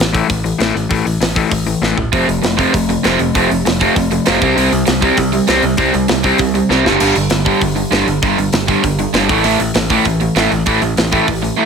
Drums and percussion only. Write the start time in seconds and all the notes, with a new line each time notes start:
0.00 snare, open hi-hat
0.15 kick, open hi-hat
0.30 kick, open hi-hat
0.46 open hi-hat
0.60 snare, open hi-hat
0.77 open hi-hat
0.91 kick, open hi-hat
1.07 open hi-hat
1.22 snare, open hi-hat
1.36 kick, open hi-hat
1.52 kick, open hi-hat
1.66 open hi-hat
1.83 snare
1.98 floor tom
2.13 kick, open hi-hat
2.29 open hi-hat
2.43 snare, open hi-hat
2.59 kick, open hi-hat
2.74 kick, open hi-hat
2.90 open hi-hat
3.04 snare, open hi-hat
3.19 open hi-hat
3.35 kick, open hi-hat
3.51 open hi-hat
3.66 snare, open hi-hat
3.81 kick, open hi-hat
3.96 kick, open hi-hat
4.11 open hi-hat
4.26 snare, open hi-hat
4.42 kick, open hi-hat
4.58 open hi-hat
4.72 open hi-hat
4.87 snare, open hi-hat
5.02 kick, open hi-hat
5.17 kick, open hi-hat
5.33 open hi-hat
5.48 snare, open hi-hat
5.62 open hi-hat
5.77 kick, open hi-hat
5.94 open hi-hat
6.08 snare, open hi-hat
6.23 kick, open hi-hat
6.38 kick, open hi-hat
6.55 open hi-hat
6.71 snare
6.86 snare
7.00 open hi-hat, splash
7.16 open hi-hat
7.30 snare, open hi-hat
7.46 kick, open hi-hat
7.61 kick, open hi-hat
7.76 open hi-hat
7.92 snare, open hi-hat
8.08 open hi-hat
8.23 kick, open hi-hat
8.38 open hi-hat
8.53 snare, open hi-hat
8.68 kick, open hi-hat
8.84 kick, open hi-hat
8.99 open hi-hat
9.14 snare, open hi-hat
9.29 kick, open hi-hat
9.44 open hi-hat
9.60 open hi-hat
9.74 snare, open hi-hat
9.90 kick, open hi-hat
10.05 kick, open hi-hat
10.21 open hi-hat
10.36 snare, open hi-hat
10.52 open hi-hat
10.66 kick, open hi-hat
10.82 open hi-hat
10.97 snare, open hi-hat
11.12 kick, open hi-hat
11.28 kick, open hi-hat
11.44 open hi-hat